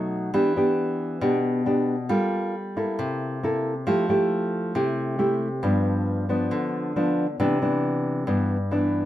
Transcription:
Already playing: B2 F#3 A3 D#4
0.34 E3 B3 D4 G4
0.56 B3 D4 G4
1.21 B2 B3 D4 G4
1.66 B3 D4 G4
2.09 G3 A#3 F4 A4
2.76 A#3 E4 A4
2.99 C3
3.43 A#3 E4 A4
3.87 F3 A3 E4 G4
4.09 A3 E4 G4
4.75 C3 A3 E4 G4
5.19 A3 E4 G4
5.63 G2 F3 B3 D4
6.29 F3 B3 D4
6.51 D3
6.96 F3 B3 D4
7.40 C3 E3 B3 D4
7.62 E3 B3 D4
8.27 G2 E3 B3 D4
8.71 E3 B3 D4

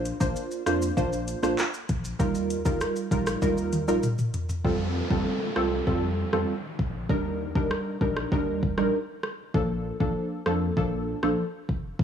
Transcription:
Already playing: A#1 A#3 D4 F4 C5
0.05 closed hi-hat, shaker
0.20 A#1 A#3 D4 F4 C5, kick, shaker, maracas
0.36 shaker, maracas
0.51 maracas, shaker
0.66 F2 A#3 D4 F4 C5, cross-stick, closed hi-hat, maracas, shaker
0.82 shaker, maracas
0.97 A#1 A#3 D4 F4 C5, kick, shaker, maracas
1.13 maracas, shaker
1.28 closed hi-hat, shaker, maracas
1.43 A#1 A#3 D4 F4 C5, cross-stick, shaker, maracas
1.58 clap, shaker, maracas
1.74 shaker, maracas
1.89 A#1, kick, closed hi-hat, shaker
2.04 maracas, shaker
2.19 D#2 G3 D#4 F4 A#4, kick, maracas, shaker
2.35 maracas, shaker
2.50 closed hi-hat, shaker
2.65 D#2 G3 D#4 F4 A#4, kick, shaker, maracas
2.81 cross-stick, maracas, shaker
2.96 maracas, shaker
3.11 A#1 G3 D#4 F4 A#4, kick, closed hi-hat, maracas, shaker
3.27 cross-stick, maracas, shaker
3.42 D#2 G3 D#4 F4 A#4, kick, high tom, maracas, shaker
3.57 maracas, shaker
3.73 closed hi-hat, mid tom, shaker, maracas
3.88 A#1 G3 D#4 F4 A#4, shaker, maracas
4.03 mid tom, maracas, shaker
4.19 mid tom, shaker, maracas
4.34 closed hi-hat, floor tom, shaker
4.49 floor tom, maracas, shaker
4.64 F2 G3 C4 F4 A4, kick, downlifter
5.10 F2 G3 C4 F4 A4, kick
5.56 C2 G3 C4 F4 A4, cross-stick
5.87 F2 G3 C4 F4 A4, kick
6.33 F2 G3 C4 F4 A4, cross-stick
6.79 A#1, kick
7.09 D#2 G3 D4 D#4 A#4, kick
7.55 D#2 G3 D4 D#4 A#4, kick
7.71 cross-stick
8.01 A#1 G3 D4 D#4 A#4, kick
8.17 cross-stick
8.32 D#2 G3 D4 D#4 A#4, kick
8.63 kick
8.78 A#1 G3 D4 D#4 A#4, cross-stick
9.23 cross-stick
9.54 A#1 F3 A#3 D4 A4, kick
10.00 A#1 F3 A#3 D4 A4, kick
10.46 F2 F3 A#3 D4 A4, cross-stick
10.77 A#1 F3 A#3 D4 A4, kick
11.23 A#1 F3 A#3 D4 A4, cross-stick
11.69 F1, kick
11.99 A#1, kick

